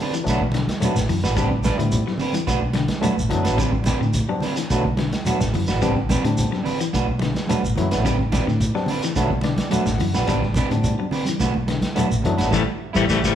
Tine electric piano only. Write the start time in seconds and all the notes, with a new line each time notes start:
0.24 F#3 A3 B3 D4
0.80 F#3 A3 B3 D4
1.35 G3 B3 C4 D4
1.78 G3 B3 C4 E4
3.01 F#3 A3 B3 D4
3.30 F#3 A3 B3 D4
4.29 G3 B3 C4 D4
4.71 F#3 A3 B3 D4
5.26 F#3 A3 B3 D4
5.82 G3 B3 C4 D4
6.26 G3 B3 C4 D4
7.49 F#3 A3 B3 D4
7.77 F#3 A3 B3 E4
8.75 G3 B3 C4 D4
9.16 F#3 A3 B3 D4
9.44 D5
9.71 F#3 A3 B3 D4 F#5
10.27 G3 B3 C4 D4
10.71 G3 B3 C4 D4
11.96 F#3 A3 B3 D4
12.25 F#3 A3 B3 D4
12.53 G3 A3 C4
12.96 G3 A3 C4
13.11 G3 A3 C4
13.25 G3 A3 C4